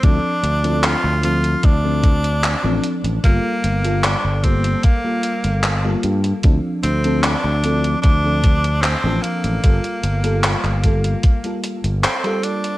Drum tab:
HH |x-xxx-xxx-xxx-xx|x-xxx-xxx-xxx-xx|x-xxx-xxx-xxx-xx|xxxxxxxxxxxxxxxx|
CP |----x-------x---|----x-------x---|----x-------x---|----xx------x---|
BD |o-------o-o-----|o-----o-o-------|o-------o-o-----|o-----o-o-------|